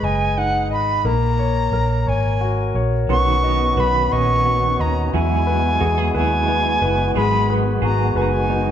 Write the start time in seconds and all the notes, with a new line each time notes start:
Already playing: G#3 B4 D#5
0.03 F#1 D#5 G#5
0.37 D#4 F#5
0.70 G#1 D#5 B5
1.05 A#1 A#3 A#5
1.39 C#5
1.72 A#1 A#4
2.07 G#1 C#5 G#5
2.41 F#4
2.75 A#1 C#5
3.09 B1 D#3 B3 C#4 F#4 C#6
3.43 B3 D#5
3.77 B1 F#4 B4 B5
4.12 A#1 C#4 D#5 C#6
4.45 B3 F#4
4.79 D#2 C#4 D#5 A#5
5.13 E2 F#3 G#3 E4 F#4 G#4 G#5
5.47 B3 B4
5.80 E2 F#4 G#4
5.98 G#4
6.14 D#2 E4 B4 G#5
6.48 B3
6.82 F#1 E4 B4
7.15 G#1 D#3 F#3 G#3 G#4 B5
7.48 B3 B4
7.82 G#1 F#4 G#4 A#5
8.15 F#1 D#4 B4 G#5
8.22 A#5
8.29 G#5
8.49 B3 D#4